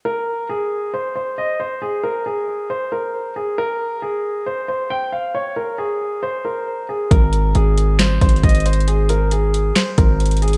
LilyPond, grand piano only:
\new Staff \with { instrumentName = "Grand piano" } { \time 4/4 \key aes \major \tempo 4 = 136 bes'4 aes'4 c''8 c''8 ees''8 c''8 | aes'8 bes'8 aes'4 c''8 bes'4 aes'8 | bes'4 aes'4 c''8 c''8 g''8 f''8 | des''8 bes'8 aes'4 c''8 bes'4 aes'8 |
bes'4 aes'4 c''8 c''8 ees''8 c''8 | aes'8 bes'8 aes'4 c''8 bes'4 aes'8 | }